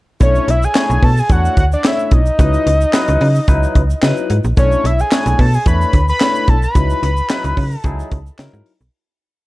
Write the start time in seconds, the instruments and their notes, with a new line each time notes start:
0.20 fm bass B1, tine electric piano A3 D4 E4 C#5, analog synth lead C#5, kick, closed hi-hat, shaker
0.35 shaker
0.48 fm bass B1, analog synth lead E5, closed hi-hat
0.63 analog synth lead G#5, shaker
0.75 tine electric piano A3 D4 E4 C#5, snare, clap, closed hi-hat, shaker
0.90 fm bass B1, shaker
1.03 fm bass B2, analog synth lead A5, kick, open hi-hat
1.17 analog synth lead G#5, shaker
1.29 fm bass E2, tine electric piano A3 D4 E4 C#5, analog synth lead F#5, kick, closed hi-hat, shaker
1.45 shaker
1.57 fm bass D2, analog synth lead F#5, kick, closed hi-hat
1.72 analog synth lead D5, shaker
1.84 tine electric piano A3 D4 E4 C#5, analog synth lead E5, snare, clap, closed hi-hat, shaker
1.99 shaker
2.06 analog synth lead E5
2.11 fm bass B1, analog synth lead D#5, kick, closed hi-hat
2.26 shaker
2.38 fm bass C#2, tine electric piano F#3 D#4 E4 B4, kick, closed hi-hat, shaker
2.54 shaker
2.67 fm bass C#2, closed hi-hat
2.81 shaker
2.93 tine electric piano F#3 D#4 E4 B4, snare, clap, closed hi-hat, shaker
3.08 fm bass C#2, closed hi-hat, shaker
3.21 fm bass C#3, open hi-hat
3.35 shaker
3.48 fm bass C#2, tine electric piano F#3 D#4 E4 B4, kick, closed hi-hat, shaker
3.63 shaker
3.75 fm bass C#2, kick, closed hi-hat
3.90 shaker
4.02 fm bass C#3, tine electric piano F#3 D#4 E4 B4, snare, clap, closed hi-hat, shaker
4.17 shaker
4.30 fm bass G#2, closed hi-hat
4.44 fm bass A#1, shaker
4.57 fm bass B1, tine electric piano A3 D4 E4 C#5, analog synth lead C#5, kick, closed hi-hat, shaker
4.72 shaker
4.84 fm bass B1, analog synth lead E5, closed hi-hat
4.99 analog synth lead G#5, shaker
5.11 tine electric piano A3 D4 E4 C#5, snare, clap, closed hi-hat, shaker
5.26 fm bass B1, closed hi-hat, shaker
5.39 fm bass B2, analog synth lead A5, kick, open hi-hat
5.53 analog synth lead G#5, shaker
5.66 fm bass E2, tine electric piano A3 D4 E4 C#5, analog synth lead B5, kick, closed hi-hat, shaker
5.81 shaker
5.93 fm bass D2, kick, closed hi-hat
6.08 analog synth lead B5, shaker
6.20 tine electric piano A3 D4 E4 C#5, snare, clap, closed hi-hat, shaker
6.35 shaker
6.48 fm bass B1, analog synth lead A5, kick, closed hi-hat
6.62 analog synth lead B5, shaker
6.75 fm bass C#2, tine electric piano F#3 D#4 E4 B4, kick, closed hi-hat, shaker
6.90 shaker
7.03 fm bass C#2, closed hi-hat
7.17 shaker
7.29 tine electric piano F#3 D#4 E4 B4, snare, clap, closed hi-hat, shaker
7.44 fm bass C#2, closed hi-hat, shaker
7.57 fm bass C#3, kick, open hi-hat
7.71 shaker
7.77 analog synth lead A5
7.84 fm bass C#2, tine electric piano F#3 D#4 E4 G#4, kick, closed hi-hat, shaker
8.00 shaker
8.11 fm bass C#2, kick, closed hi-hat
8.26 shaker
8.38 fm bass C#3, tine electric piano F#3 D#4 E4 A#4, snare, clap, closed hi-hat, shaker
8.53 fm bass G#2, shaker
8.66 open hi-hat
8.81 fm bass B1, shaker